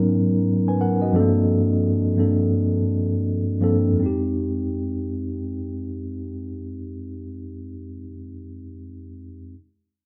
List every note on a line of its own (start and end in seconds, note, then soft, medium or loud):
0.00 1.15 G#2 loud
0.00 1.16 F#3 loud
0.00 1.16 B3 medium
0.00 1.16 C#4 medium
0.00 1.16 D#4 medium
0.00 0.81 A#4 loud
0.68 0.80 B4 medium
0.68 0.80 G#5 medium
0.81 1.00 A#4 medium
0.81 1.00 F#5 medium
1.02 1.34 F#4 soft
1.02 1.33 D#5 medium
1.13 2.10 G2 loud
1.13 2.10 F3 medium
1.13 1.22 A3 medium
1.13 2.11 C4 medium
1.13 2.12 D4 medium
1.13 2.12 A4 loud
1.20 2.14 A#3 loud
2.16 3.52 G2 medium
2.16 3.52 F3 medium
2.16 3.53 A#3 medium
2.16 3.53 C4 medium
2.16 3.53 D4 medium
2.16 3.54 A4 medium
3.61 3.96 G2 medium
3.61 3.97 F3 medium
3.61 3.97 A#3 medium
3.61 3.97 C4 medium
3.61 3.98 D4 medium
3.61 3.98 A4 medium
3.92 7.92 F2 medium
3.92 7.96 G#3 medium
3.99 7.99 C4 medium
3.99 8.03 D#4 medium
4.06 8.06 G4 medium